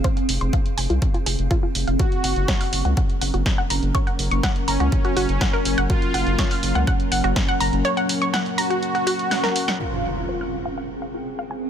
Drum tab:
HH |xxoxxxoxxxoxx-ox|xxoxxooxxxoxx-ox|xxoxxxoxxxoxx-ox|xxoxxooxxxoxx-ox|
SD |----------------|----o-------o---|----o-------o---|----o-------o---|
BD |o---o---o---o---|o---o---o---o---|o---o---o---o---|o---o---o---o---|

HH |xxoxxxoxxxoxoxox|----------------|
SD |----o-------oo-o|----------------|
BD |----------------|----------------|